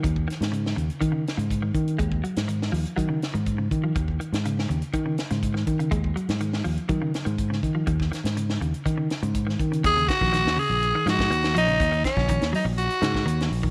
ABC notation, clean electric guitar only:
X:1
M:4/4
L:1/16
Q:1/4=123
K:Ebm
V:1 name="Clean electric guitar" clef=bass
E,2 E,2 D,2 D,2 E, D,2 D,2 E,2 z | A,2 G,2 E,2 F,2 G, D,2 E,2 D,2 F, | E,2 E,2 D,2 D,2 E, D,2 D,2 E,2 D, | A,2 G,2 E,2 F,2 G, D,2 E,2 D,2 F, |
E,2 E,2 D,2 D,2 E, D,2 D,2 E,2 D, | E, D,2 E, E,2 D,2 z E, F,2 E,2 F, D,- | D, E,2 D, E,2 G, z3 D,2 E,2 z E, |]